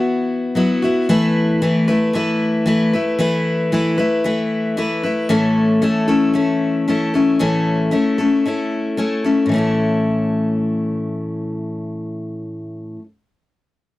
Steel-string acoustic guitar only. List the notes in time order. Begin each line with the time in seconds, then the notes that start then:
Already playing: B3 E4 F#4
0.55 F#3 B3 E4 F#4
0.82 B3 E4 F#4
1.09 E3 A3 E4 B4
1.62 E3 A3 E4 B4
1.88 A3 E4 B4
2.13 E3 A3 E4 B4
2.66 E3 A3 E4 B4
2.93 A3 E4 B4
3.19 E3 A3 E4 B4
3.72 E3 A3 E4 B4
3.98 A3 E4 B4
4.24 E3 A3 E4 B4
4.77 E3 A3 E4 B4
5.03 A3 E4 B4
5.29 A2 E3 A3 C#4 E4 A4
5.82 A3 C#4 E4 A4
6.08 A3 C#4 E4 A4
6.33 A3 C#4 E4 A4
6.88 A3 C#4 E4 A4
7.14 A3 C#4 E4 A4
7.39 A2 E3 A3 C#4 E4 A4
7.91 A3 C#4 E4 A4
8.18 A3 C#4 E4 A4
8.46 A3 C#4 E4 A4
8.97 A3 C#4 E4 A4
9.24 A3 C#4 E4 A4
9.46 A2 E3
9.52 A3 C#4
9.56 E4 A4